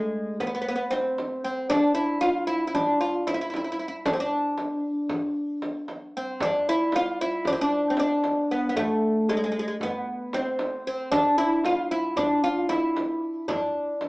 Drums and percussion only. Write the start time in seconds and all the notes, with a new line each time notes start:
0.40 frame drum
0.92 frame drum
1.18 frame drum
1.70 frame drum
2.23 frame drum
2.75 frame drum
3.27 frame drum
3.54 frame drum
4.05 frame drum
4.58 frame drum
5.09 frame drum
5.62 frame drum
5.88 frame drum
6.40 frame drum, darbuka dum
6.68 darbuka ka
6.92 darbuka tek, frame drum
7.20 darbuka ka
7.45 frame drum, darbuka dum
7.72 darbuka ka
7.97 darbuka tek, frame drum
8.23 darbuka tek, frame drum
8.37 darbuka ka
8.75 darbuka dum, frame drum
9.02 darbuka ka
9.29 darbuka tek, frame drum
9.80 darbuka dum, frame drum
10.07 darbuka ka
10.33 darbuka tek, frame drum
10.59 darbuka tek, frame drum
10.73 darbuka ka
11.12 darbuka dum, frame drum
11.38 darbuka ka
11.64 darbuka tek, frame drum
12.16 darbuka dum, frame drum
12.69 darbuka tek, frame drum
12.96 darbuka tek, frame drum
13.09 darbuka ka
13.48 darbuka dum, frame drum
13.75 darbuka ka
14.01 darbuka tek, frame drum